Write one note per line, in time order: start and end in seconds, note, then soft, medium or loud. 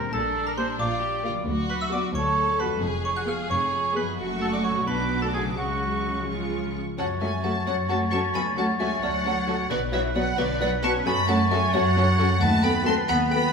0.00 1.40 A#2 soft
0.00 1.42 G3 soft
0.00 0.11 C4 medium
0.00 2.79 D4 soft
0.00 0.13 A#4 medium
0.00 0.11 A#5 medium
0.13 0.66 A#1 medium
0.13 0.66 A#2 medium
0.13 0.78 D4 medium
0.13 0.46 A4 medium
0.13 0.44 A5 medium
0.47 0.52 A#4 medium
0.47 0.57 A#5 medium
0.57 0.74 A#3 medium
0.57 0.74 G4 medium
0.57 0.68 C5 medium
0.57 0.78 C6 medium
0.57 0.74 D6 medium
0.79 1.33 A#1 medium
0.79 1.33 A#2 medium
0.79 1.02 F4 medium
0.79 1.46 D5 medium
0.79 1.43 D6 medium
1.02 1.24 G4 medium
1.24 1.41 A#3 medium
1.24 1.32 F4 medium
1.24 1.41 G4 medium
1.24 1.41 D6 medium
1.29 2.75 D3 medium
1.33 2.77 F#3 soft
1.38 4.16 B3 soft
1.42 2.13 F#4 medium
1.42 2.76 B4 soft
1.47 2.00 D2 medium
1.70 1.75 B4 medium
1.70 1.80 B5 medium
1.81 1.87 E5 medium
1.81 1.91 E6 medium
1.92 2.09 B3 medium
1.92 2.09 F#4 medium
1.92 2.03 D5 medium
1.92 2.08 B5 medium
1.92 2.13 D6 medium
2.14 2.68 D2 medium
2.14 2.81 A4 medium
2.14 2.62 C#5 medium
2.14 2.57 C#6 medium
2.59 2.77 B3 medium
2.59 2.77 F#4 medium
2.59 2.83 B4 medium
2.59 2.76 B5 medium
2.59 2.81 B5 medium
2.64 4.11 F2 medium
2.68 4.13 G#3 soft
2.73 4.08 C#4 soft
2.77 4.18 B4 soft
2.82 3.36 F1 medium
2.82 3.36 F2 medium
2.82 4.18 G#4 medium
3.05 3.10 C#5 medium
3.05 3.15 C#6 medium
3.16 3.22 F#5 medium
3.16 3.27 F#6 medium
3.27 3.44 B3 medium
3.27 3.44 G#4 medium
3.27 3.50 F5 medium
3.27 3.44 C#6 medium
3.27 3.49 F6 medium
3.50 4.04 F1 medium
3.50 4.04 F2 medium
3.50 3.95 C#5 medium
3.50 3.93 C#6 medium
3.96 4.13 B3 medium
3.96 4.13 G#4 medium
3.96 4.06 B4 medium
3.96 4.17 B5 soft
3.96 4.13 C#6 medium
4.01 4.80 F#2 medium
4.05 4.73 F#3 soft
4.09 4.85 C#4 soft
4.14 4.87 A4 soft
4.19 4.83 F#1 medium
4.19 4.84 F#2 medium
4.19 4.83 A3 medium
4.19 4.83 F#4 medium
4.19 4.86 F#4 medium
4.19 4.83 C#6 medium
4.41 4.47 A4 medium
4.41 4.52 A5 medium
4.53 4.58 D5 medium
4.53 4.64 D6 medium
4.64 4.87 C#5 medium
4.64 4.86 C#6 soft
4.69 5.50 B2 soft
4.74 5.43 F#3 soft
4.78 5.55 D4 soft
4.83 5.57 B4 soft
4.87 5.57 B1 medium
4.87 5.58 B2 medium
4.87 5.22 B3 soft
4.87 5.56 D4 medium
4.87 5.56 F#4 soft
4.87 5.21 B4 medium
4.87 5.20 B5 medium
4.87 5.56 D6 medium
5.22 5.58 A3 soft
5.22 5.27 A4 medium
5.22 5.33 A5 soft
5.33 5.44 G#4 medium
5.33 5.56 G#5 soft
5.39 6.09 C#3 soft
5.44 6.23 F#3 soft
5.48 6.18 C#4 soft
5.53 6.26 F#4 medium
5.53 6.22 G#4 soft
5.57 6.76 C#2 soft
5.57 6.76 C#3 soft
5.57 6.27 G#3 soft
5.57 6.61 C#4 soft
5.57 6.27 F#4 soft
5.57 6.24 F#5 soft
5.57 6.27 C#6 soft
6.10 6.91 C#3 soft
6.14 6.93 F3 soft
6.19 7.43 C#4 soft
6.24 6.98 G#4 soft
6.28 6.77 G#3 soft
6.28 6.77 F4 soft
6.28 6.77 C#6 soft
6.98 7.58 F#2 medium
6.98 8.36 F#2 soft
6.98 7.06 F#3 medium
6.98 7.06 F#3 soft
6.98 7.06 C#4 soft
6.98 7.07 F#4 soft
6.98 7.06 A4 soft
6.98 9.66 C#5 soft
6.98 7.20 C#5 medium
6.98 7.06 F#5 medium
6.98 9.71 A6 soft
7.21 7.29 F#3 soft
7.21 7.29 G#3 soft
7.21 7.29 A3 soft
7.21 7.29 C#4 soft
7.21 7.29 F#4 soft
7.21 7.29 A4 soft
7.21 7.42 E5 soft
7.21 7.43 G#5 medium
7.43 7.52 F#3 soft
7.43 7.52 A3 medium
7.43 7.52 A3 soft
7.43 7.52 C#4 soft
7.43 8.56 C#4 soft
7.43 7.51 F#4 soft
7.43 7.52 F#4 soft
7.43 7.51 A4 soft
7.43 7.65 F#5 soft
7.43 7.66 A5 medium
7.66 8.27 F#2 soft
7.66 7.74 F#3 medium
7.66 7.75 F#3 soft
7.66 7.75 C#4 soft
7.66 7.74 F#4 soft
7.66 9.24 F#4 soft
7.66 7.74 A4 soft
7.66 7.88 C#5 medium
7.66 7.75 F#5 medium
7.88 7.98 F#3 soft
7.88 8.11 A3 medium
7.88 7.98 A3 soft
7.88 7.97 C#4 soft
7.88 7.96 F#4 soft
7.88 7.98 F#4 soft
7.88 7.96 A4 soft
7.88 8.78 A4 soft
7.88 8.11 F#5 medium
7.88 7.97 A5 medium
8.11 11.27 F#3 soft
8.11 8.20 F#3 soft
8.11 8.20 A3 soft
8.11 8.20 C#4 soft
8.11 8.35 C#4 medium
8.11 8.19 F#4 soft
8.11 8.20 F#4 soft
8.11 8.19 A4 soft
8.11 8.33 A5 medium
8.11 8.19 C#6 medium
8.34 8.94 D2 medium
8.34 9.72 D3 medium
8.34 8.43 F#3 soft
8.34 8.42 B3 medium
8.34 8.43 C#4 soft
8.34 8.42 F#4 soft
8.34 8.42 A4 medium
8.34 8.56 G#5 medium
8.34 8.42 B5 medium
8.56 8.66 F#3 soft
8.56 8.79 A3 medium
8.56 8.65 A3 soft
8.56 9.46 C#4 soft
8.56 8.66 C#4 soft
8.56 8.64 F#4 soft
8.56 8.66 F#4 soft
8.56 8.64 A4 soft
8.56 8.79 F#5 medium
8.56 8.66 A5 medium
8.79 8.88 F#3 soft
8.79 9.02 G#3 medium
8.79 8.89 A3 soft
8.79 8.88 C#4 soft
8.79 8.88 F#4 soft
8.79 9.72 A4 soft
8.79 8.88 A4 soft
8.79 9.01 E5 medium
8.79 9.02 G#5 medium
9.02 9.62 D2 medium
9.02 9.68 F#3 medium
9.02 9.11 F#3 soft
9.02 9.11 C#4 soft
9.02 9.10 F#4 soft
9.02 9.10 A4 soft
9.02 9.72 C#5 soft
9.02 9.66 D5 medium
9.02 9.68 F#5 medium
9.25 9.33 F#3 medium
9.25 9.33 A3 soft
9.25 9.33 C#4 soft
9.25 10.36 F#4 soft
9.25 9.33 F#4 soft
9.25 9.33 A4 soft
9.47 9.55 F#3 medium
9.47 9.55 A3 soft
9.47 9.72 C#4 soft
9.47 9.55 C#4 medium
9.47 9.55 F#4 soft
9.47 9.56 F#4 soft
9.47 9.55 A4 soft
9.69 10.30 B1 medium
9.69 11.08 B2 medium
9.69 9.78 D3 medium
9.69 9.78 F#3 medium
9.69 9.78 B3 medium
9.69 9.77 F#4 medium
9.69 11.03 B4 medium
9.69 9.78 B4 medium
9.69 9.91 B4 medium
9.69 9.78 D5 medium
9.69 11.08 F#6 medium
9.92 10.15 E3 medium
9.92 10.01 F#3 medium
9.92 10.81 B3 soft
9.92 10.01 B3 medium
9.92 10.01 B3 soft
9.92 10.00 F#4 medium
9.92 10.00 B4 soft
9.92 10.14 C#5 medium
9.92 10.01 E5 medium
10.15 10.23 F#3 medium
10.15 10.23 B3 medium
10.15 10.24 B3 medium
10.15 10.23 F#4 medium
10.15 10.24 F#4 medium
10.15 10.59 B4 medium
10.15 10.23 B4 soft
10.15 10.37 D5 medium
10.15 10.37 F#5 medium
10.37 10.98 B1 medium
10.37 10.60 D3 medium
10.37 10.46 F#3 medium
10.37 10.46 B3 medium
10.37 10.45 F#4 medium
10.37 11.72 F#4 soft
10.37 10.45 B4 medium
10.37 10.59 B4 medium
10.37 10.61 D5 medium
10.60 10.68 F#3 medium
10.60 10.69 F#3 medium
10.60 10.69 B3 medium
10.60 10.68 F#4 medium
10.60 10.69 F#4 medium
10.60 11.08 B4 medium
10.60 10.68 B4 medium
10.60 10.82 D5 medium
10.60 10.69 F#5 medium
10.83 10.91 F#3 medium
10.83 11.07 B3 medium
10.83 10.91 B3 medium
10.83 10.92 B3 medium
10.83 11.05 C#4 medium
10.83 10.91 F#4 medium
10.83 10.92 F#4 medium
10.83 10.91 B4 medium
10.83 11.05 A5 medium
10.83 10.92 C#6 medium
11.05 12.43 F#2 medium
11.05 11.66 F#2 medium
11.05 11.14 F#3 medium
11.05 11.14 B3 medium
11.05 11.14 C#4 medium
11.05 11.13 F#4 medium
11.05 11.13 A4 medium
11.05 12.39 C#5 medium
11.05 11.27 G#5 medium
11.05 11.28 B5 medium
11.05 13.49 A6 medium
11.28 11.36 F#3 medium
11.28 12.17 F#3 soft
11.28 11.51 A3 medium
11.28 11.36 C#4 medium
11.28 11.37 C#4 medium
11.28 11.36 F#4 medium
11.28 11.36 A4 medium
11.28 11.37 A4 medium
11.28 11.50 F#5 medium
11.28 11.51 A5 medium
11.51 11.59 F#3 medium
11.51 11.59 G#3 medium
11.51 12.43 C#4 medium
11.51 11.59 C#4 medium
11.51 11.59 F#4 medium
11.51 11.59 A4 medium
11.51 11.60 A4 medium
11.51 11.72 E5 medium
11.51 11.73 G#5 medium
11.73 12.33 F#2 medium
11.73 12.40 F#3 medium
11.73 11.82 F#3 medium
11.73 11.82 C#4 medium
11.73 13.30 F#4 medium
11.73 11.82 F#4 medium
11.73 11.82 A4 medium
11.73 12.37 C#5 medium
11.73 12.41 F#5 loud
11.96 12.04 F#3 medium
11.96 12.04 C#4 medium
11.96 12.05 C#4 medium
11.96 12.04 F#4 medium
11.96 12.85 A4 medium
11.96 12.04 A4 medium
12.18 13.53 F#3 medium
12.18 12.27 F#3 medium
12.18 12.27 C#4 medium
12.18 12.27 F#4 medium
12.18 12.27 A4 medium
12.41 12.94 D#2 medium
12.41 13.53 D#3 medium
12.41 12.63 A3 medium
12.41 13.53 B4 medium
12.41 12.62 F#5 medium
12.41 12.63 A5 loud
12.63 13.53 B3 medium
12.63 12.72 B3 medium
12.63 12.72 A4 medium
12.63 12.84 G5 medium
12.63 12.86 B5 medium
12.85 13.03 A3 medium
12.85 12.94 B3 medium
12.85 13.03 B3 medium
12.85 12.95 C4 medium
12.85 13.02 F#4 medium
12.85 12.94 A4 medium
12.85 13.53 A4 medium
12.85 13.02 B4 medium
12.85 13.07 A5 medium
12.85 12.94 C6 medium
13.08 13.53 D#2 medium
13.08 13.30 B3 medium
13.08 13.53 B4 medium
13.08 13.30 F#5 medium
13.08 13.17 B5 loud
13.31 13.39 B3 medium
13.31 13.53 B3 medium
13.31 13.53 F#4 medium
13.31 13.39 A4 medium
13.31 13.53 G5 medium
13.31 13.53 B5 medium